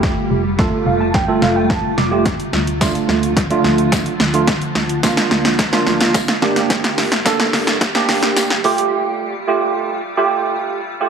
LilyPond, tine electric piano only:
\new Staff \with { instrumentName = "Tine electric piano" } { \time 4/4 \key f \major \tempo 4 = 108 << { r4. f''16 a''16 g''8 f''16 g''16 a''8 d'''8 | r1 | r1 | r1 |
r1 | } \\ { <a f' g'>8. r16 <a f' a'>4 r16 <a f' a'>4 r8 <a f' g'>16 | r4 <a d' f'>4 r16 <a d' f'>4 r8 <a d' f'>16 | r4 <bes d' f'>4 r16 <bes d' f'>4 r16 <bes d' g'>8~ | <bes d' g'>8. r16 <bes d' a'>4 r16 <bes d' g'>4 r16 <a f' g'>8~ |
<a f' g'>8. r16 <a f' g'>4 r16 <a f' g'>4 r8 <a f' g'>16 | } >> }